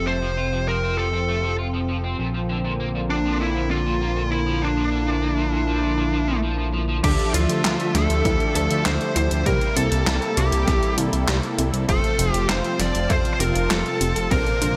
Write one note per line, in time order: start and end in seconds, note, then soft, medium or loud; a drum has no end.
0.00 2.16 F1 medium
0.00 2.15 C3 medium
0.00 7.00 F3 medium
0.00 4.58 C4 medium
0.07 0.15 A3 loud
0.07 0.68 C5 loud
0.22 0.30 F3 loud
0.38 0.45 F4 loud
0.53 0.57 F3 medium
0.68 0.75 F3 medium
0.68 0.98 A#4 medium
0.83 0.94 C4 medium
0.98 1.06 F3 medium
0.98 1.55 A4 medium
1.13 1.18 C4 medium
1.28 1.36 A3 loud
1.44 1.51 F3 loud
1.59 1.66 F4 loud
1.74 1.78 F3 loud
1.89 1.96 F3 medium
2.04 2.15 C4 medium
2.19 7.01 A#1 medium
2.19 2.27 A#2 medium
2.19 7.00 D3 medium
2.19 7.00 A#3 medium
2.34 2.39 F3 medium
2.49 2.57 D3 loud
2.64 2.72 A#2 loud
2.80 2.87 A#3 loud
2.95 3.00 A#2 loud
3.10 3.18 A#2 medium
3.10 3.41 D4 medium
3.25 3.37 F3 medium
3.40 3.48 A#2 medium
3.40 3.69 E4 loud
3.56 3.60 F3 medium
3.71 3.78 D3 loud
3.71 4.31 F4 loud
3.86 3.94 A#2 loud
4.01 4.09 A#3 loud
4.16 4.21 A#2 loud
4.31 4.39 A#2 medium
4.31 4.62 E4 loud
4.47 4.58 F3 medium
4.62 4.69 A#2 medium
4.62 6.39 D4 medium
4.62 7.02 E4 medium
4.77 4.81 F3 medium
4.92 4.99 D3 loud
5.07 5.14 A#2 loud
5.22 5.30 A#3 loud
5.37 5.42 A#2 loud
5.52 5.60 A#2 medium
5.67 5.79 F3 medium
5.83 5.90 A#2 medium
5.98 6.02 F3 medium
6.13 6.17 F3 medium
6.28 6.36 F3 medium
6.43 6.55 F3 loud
6.58 6.66 F3 loud
6.74 6.81 F3 medium
6.89 6.96 F3 loud
7.04 7.16 D2 loud
7.04 9.44 D3 medium
7.04 7.25 D3 medium
7.04 9.44 F3 medium
7.04 7.91 F3 medium
7.04 9.44 A3 medium
7.04 7.91 D4 medium
7.04 7.32 G4 medium
7.04 7.91 A4 loud
7.04 9.44 E5 medium
7.04 7.91 E5 medium
7.04 kick loud
7.04 closed hi-hat medium
7.04 crash loud
7.19 closed hi-hat soft
7.34 7.47 D2 loud
7.34 7.55 E3 medium
7.34 7.97 F4 loud
7.34 7.97 F4 medium
7.34 closed hi-hat medium
7.49 7.62 D2 medium
7.49 closed hi-hat medium
7.64 7.77 D2 medium
7.64 7.86 F3 loud
7.64 snare loud
7.64 clap loud
7.64 closed hi-hat medium
7.80 closed hi-hat soft
7.95 8.07 D2 loud
7.95 8.16 D3 medium
7.95 9.43 F3 medium
7.95 9.43 D4 medium
7.95 9.43 E4 medium
7.95 9.43 G4 loud
7.95 8.54 A4 loud
7.95 snare medium
7.95 closed hi-hat loud
8.10 8.22 D2 medium
8.10 closed hi-hat medium
8.25 8.38 D2 loud
8.25 8.46 E3 medium
8.25 kick loud
8.25 closed hi-hat medium
8.40 closed hi-hat soft
8.55 8.68 D2 loud
8.55 8.77 D3 medium
8.55 8.87 A4 loud
8.55 8.85 A4 loud
8.55 closed hi-hat medium
8.71 8.83 D2 medium
8.71 closed hi-hat medium
8.86 8.98 D2 loud
8.86 9.07 D3 medium
8.86 9.15 C5 loud
8.86 snare loud
8.86 clap loud
8.86 closed hi-hat medium
9.01 closed hi-hat soft
9.16 9.29 D2 medium
9.16 9.37 E3 medium
9.16 9.47 C5 loud
9.16 9.46 C5 loud
9.16 closed hi-hat loud
9.31 9.44 D2 medium
9.31 closed hi-hat medium
9.46 9.59 C2 loud
9.46 14.77 C3 medium
9.46 10.34 C3 medium
9.46 9.67 G3 loud
9.46 10.34 G3 medium
9.46 11.86 G3 medium
9.46 10.34 A#3 loud
9.46 11.86 A#3 medium
9.46 10.34 C4 medium
9.46 10.34 E4 medium
9.46 11.86 E4 medium
9.46 9.78 A#4 loud
9.46 9.76 A#4 loud
9.46 kick loud
9.46 closed hi-hat medium
9.61 closed hi-hat soft
9.77 9.89 C2 medium
9.77 9.98 C3 medium
9.77 10.39 A4 loud
9.77 closed hi-hat medium
9.92 10.04 C2 medium
9.92 closed hi-hat medium
10.07 10.19 C2 loud
10.07 10.28 E3 medium
10.07 snare loud
10.07 clap loud
10.07 closed hi-hat medium
10.22 closed hi-hat soft
10.37 10.50 C2 medium
10.37 11.85 C3 medium
10.37 10.58 C3 medium
10.37 11.85 G3 medium
10.37 11.85 C4 medium
10.37 11.85 E4 medium
10.37 10.94 G4 medium
10.37 11.85 A4 loud
10.37 closed hi-hat loud
10.52 10.65 C2 medium
10.52 closed hi-hat medium
10.68 10.80 C2 loud
10.68 10.89 C3 medium
10.68 kick loud
10.68 snare medium
10.68 closed hi-hat medium
10.83 closed hi-hat soft
10.98 11.10 C2 loud
10.98 11.19 E3 medium
10.98 closed hi-hat loud
11.13 11.26 C2 medium
11.13 closed hi-hat medium
11.28 11.41 C2 medium
11.28 11.49 G3 loud
11.28 snare loud
11.28 clap loud
11.28 closed hi-hat medium
11.43 closed hi-hat soft
11.58 11.71 C2 medium
11.58 11.80 C3 medium
11.58 closed hi-hat loud
11.73 11.86 C2 medium
11.73 closed hi-hat medium
11.89 12.01 F1 loud
11.89 14.29 F3 medium
11.89 12.10 F3 medium
11.89 12.76 A3 medium
11.89 14.29 C4 medium
11.89 12.76 C4 medium
11.89 14.29 F4 medium
11.89 12.76 F4 medium
11.89 12.33 A4 loud
11.89 12.76 C5 loud
11.89 kick loud
11.89 closed hi-hat medium
12.04 closed hi-hat soft
12.19 12.32 F1 loud
12.19 12.40 C3 medium
12.19 closed hi-hat medium
12.33 12.47 F1 medium
12.33 12.45 G4 loud
12.33 closed hi-hat medium
12.49 12.62 F1 loud
12.49 12.71 C3 medium
12.49 12.81 C5 loud
12.49 snare loud
12.49 clap loud
12.49 closed hi-hat medium
12.64 closed hi-hat soft
12.79 12.92 F1 loud
12.79 14.28 F3 medium
12.79 13.01 F3 medium
12.79 14.28 C4 medium
12.79 14.28 F4 medium
12.79 13.11 D5 loud
12.79 14.28 A5 loud
12.79 snare medium
12.79 closed hi-hat loud
12.95 13.07 F1 medium
12.95 closed hi-hat medium
13.10 13.23 F1 loud
13.10 13.31 A3 loud
13.10 13.32 C5 loud
13.10 kick loud
13.10 closed hi-hat medium
13.25 closed hi-hat soft
13.33 13.40 C5 medium
13.40 13.53 F1 loud
13.40 13.61 C3 medium
13.40 13.70 A#4 medium
13.40 13.72 A#4 loud
13.40 closed hi-hat loud
13.55 13.68 F1 medium
13.55 closed hi-hat medium
13.71 13.83 F1 loud
13.71 13.92 F3 medium
13.71 14.31 A4 loud
13.71 14.33 A4 loud
13.71 snare loud
13.71 clap medium
13.71 closed hi-hat medium
13.86 closed hi-hat soft
14.01 14.13 F1 medium
14.01 14.22 C3 medium
14.01 closed hi-hat loud
14.16 14.29 F1 medium
14.16 closed hi-hat medium
14.31 14.44 A#1 loud
14.31 14.77 A#2 medium
14.31 14.52 C3 medium
14.31 14.77 F3 medium
14.31 14.77 A#3 medium
14.31 14.77 D4 medium
14.31 14.77 F4 medium
14.31 14.77 A#4 loud
14.31 14.77 C5 loud
14.31 kick loud
14.31 closed hi-hat medium
14.46 closed hi-hat soft
14.61 14.74 A#1 medium
14.61 14.77 D3 medium
14.61 closed hi-hat medium